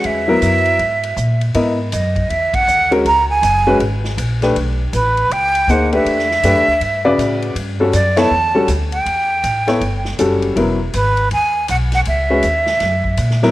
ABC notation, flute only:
X:1
M:4/4
L:1/8
Q:"Swing" 1/4=160
K:Elyd
V:1 name="Flute"
e6- e z | z2 d2 e f2 z | a g3 z4 | z2 B2 =g2 f e- |
e6- e z | z2 =d =a3 z =g- | =g6 z2 | z2 B2 g2 f f |
e6- e z |]